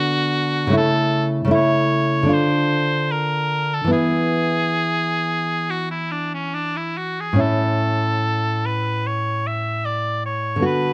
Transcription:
Already playing: nylon-string guitar D3 B3 D4, oboe F#4
0.67 nylon-string guitar C#3 A3
0.73 nylon-string guitar E4
0.77 oboe A4
1.45 nylon-string guitar C#3 A3
1.51 nylon-string guitar E4
1.55 oboe C#5
2.23 nylon-string guitar D3 D4
2.29 nylon-string guitar F4
2.33 oboe C5
3.12 oboe A#4
3.74 oboe A4
3.84 nylon-string guitar E3 B3
3.91 nylon-string guitar E4, oboe G#4
5.70 oboe F#4
5.91 oboe E4
6.11 oboe D4
6.34 oboe C#4
6.54 oboe D4
6.77 oboe E4
6.98 oboe F#4
7.20 oboe G#4
7.33 nylon-string guitar A2 C#4
7.39 nylon-string guitar E4, oboe A4
8.66 oboe B4
9.07 oboe C#5
9.47 oboe E5
9.85 oboe D5
10.26 oboe C#5
10.56 nylon-string guitar D3 B3
10.62 nylon-string guitar F#4, oboe B4

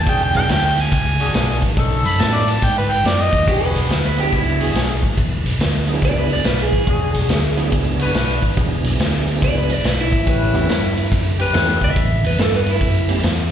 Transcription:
0.05 fingered electric bass E1, horn section D4 F#4 G#4, harmonica G5, kick, ride
0.23 harmonica G5
0.33 fingered electric bass B1, tonewheel organ F#3 B3 D4 E4 G#4, harmonica G5, ride
0.49 fingered electric bass D2, harmonica G5, snare, ride
0.65 harmonica G5
0.77 harmonica G#5, ride
0.92 fingered electric bass C#2, kick, snare, ride
1.19 horn section D4 F#4 G#4, ride
1.34 fingered electric bass B1, snare, ride
1.62 fingered electric bass G#1, kick, ride
1.76 fingered electric bass B1, horn section C#4 D#4 A4, kick, ride
2.04 fingered electric bass F#2, harmonica B5, ride
2.19 fingered electric bass A2, tonewheel organ F#3 B3 C#4 D#4 A4, harmonica A5, snare, ride
2.35 harmonica D5
2.48 harmonica A5, ride
2.62 fingered electric bass G#2, harmonica G5, kick, snare, ride
2.78 harmonica B4
2.90 harmonica G5, ride
3.04 fingered electric bass F#2, harmonica D5, snare, ride
3.21 harmonica D#5
3.33 fingered electric bass D#2, kick, ride
3.46 fingered electric bass E1, horn section D4 F#4 G#4, clean electric guitar G4, kick, crash
3.64 clean electric guitar B4
3.75 fingered electric bass B1, ride
3.89 fingered electric bass D2, snare, ride
4.06 clean electric guitar B4
4.17 tonewheel organ F#3 B3 D4 E4 G#4, clean electric guitar G4, ride
4.33 fingered electric bass C#2, clean electric guitar E4, kick, snare, ride
4.59 horn section D4 F#4 G#4, ride
4.74 fingered electric bass B1, snare, ride
5.03 fingered electric bass G#1, kick, ride
5.17 fingered electric bass E1, kick, ride
5.44 fingered electric bass B1, ride
5.59 fingered electric bass D2, snare, ride
5.87 tonewheel organ F#3 B3 D4 E4 G#4, ride
6.02 fingered electric bass C#2, clean electric guitar D5, kick, snare, ride
6.19 clean electric guitar B4
6.30 clean electric guitar D5, ride
6.44 fingered electric bass B1, clean electric guitar B4, snare, ride
6.62 clean electric guitar G#4
6.72 fingered electric bass G#1, kick, ride
6.86 fingered electric bass E1, horn section D4 F#4 G#4, kick, ride
7.14 fingered electric bass B1, ride
7.29 fingered electric bass D2, snare, ride
7.57 tonewheel organ F#3 B3 D4 E4 G#4, ride
7.72 fingered electric bass C#2, kick, snare, ride
7.99 horn section D4 F#4 B4, ride
8.14 fingered electric bass B1, snare, ride
8.42 fingered electric bass G#1, kick, ride
8.57 fingered electric bass E1, tonewheel organ F#3 B3 D4 E4 G#4, kick, ride
8.84 fingered electric bass B1, ride
9.00 fingered electric bass D2, snare, ride
9.28 ride
9.42 fingered electric bass C#2, clean electric guitar D5, kick, snare, ride
9.58 clean electric guitar B4
9.70 clean electric guitar D5, ride
9.84 fingered electric bass B1, clean electric guitar B4, snare, ride
10.01 clean electric guitar E4
10.12 fingered electric bass G#1, kick, ride
10.25 fingered electric bass A1, horn section C#4 G4 B4, kick, ride
10.54 fingered electric bass E2, tonewheel organ A3 B3 C#4 E4 G4, ride
10.69 fingered electric bass G2, snare, ride
10.97 ride
11.12 fingered electric bass F#2, kick, snare, ride
11.38 horn section C#4 G4 B4, ride
11.53 fingered electric bass E2, tonewheel organ A3 B3 C#4 E4 A4, snare, ride
11.81 fingered electric bass C#2, clean electric guitar E5, kick, ride
11.96 fingered electric bass A1, kick, ride
12.24 fingered electric bass E2, clean electric guitar B4, ride
12.38 fingered electric bass G2, clean electric guitar A4, snare, ride
12.55 clean electric guitar B4
12.66 clean electric guitar E4, ride
12.81 fingered electric bass F#2, kick, snare, ride
13.08 tonewheel organ A3 B3 C#4 E4 G4, ride
13.23 fingered electric bass E2, snare, ride

